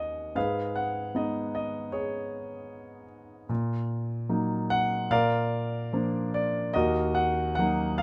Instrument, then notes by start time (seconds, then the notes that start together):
grand piano
Already playing: D#2 A#3 D#4 F#4 A#4 D#5 F#5 G#5
0.35 G#2 G#4 B4 F5
0.76 F#5
1.14 G#3 B3 D#4 D#5
1.55 D#5
1.92 G#4 C#5
3.49 A#2
4.29 F#3 A#3 D#4
4.70 F#5
5.11 A#2 A#4 D5 F5
5.93 F3 A#3 D4
6.34 D5
6.74 D#2 F#4 A#4 D#5
7.15 F#5
7.55 F#3 A#3 D#4 F#5
7.98 F5